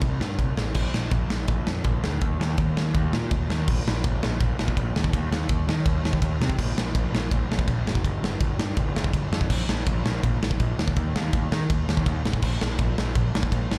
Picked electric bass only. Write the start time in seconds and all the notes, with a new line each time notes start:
0.02 C2
0.21 G2
0.39 C2
0.57 A1
0.75 A#1
0.95 A#1
1.11 A#1
1.48 A#1
1.68 F2
1.85 A#1
2.05 D2
2.22 D#2
2.40 D#2
2.58 D#2
2.95 D#2
3.13 A#2
3.31 D#2
3.50 D#2
3.68 A#1
3.87 A#1
4.04 A#1
4.23 A#1
4.40 A#1
4.59 A#1
4.77 A#1
4.96 D#2
5.13 D#2
5.32 D#2
5.50 D#2
5.68 D#3
5.86 D#2
6.04 D#2
6.22 D#2
6.41 C3
6.59 A#1
6.77 A#1
6.95 A#1
7.12 A#1
7.31 A#1
7.49 A#1
7.68 A#1
7.85 F#1
8.04 G1
8.22 G1
8.41 G1
8.58 G2
8.77 G1
8.95 G1
9.14 G1
9.32 F2
9.50 A#1
9.69 A#1
9.87 A#1
10.05 A#1
10.24 A#1
10.42 A#1
10.60 A#1
10.79 D#2
10.97 D#2
11.16 D#2
11.33 D#2
11.52 D#3
11.70 D#2
11.88 D#2
12.06 D#2
12.24 A1
12.43 A#1
12.62 A#1
12.79 A#1
12.98 A#1
13.16 A#1
13.34 A#1
13.52 A#1
13.71 A1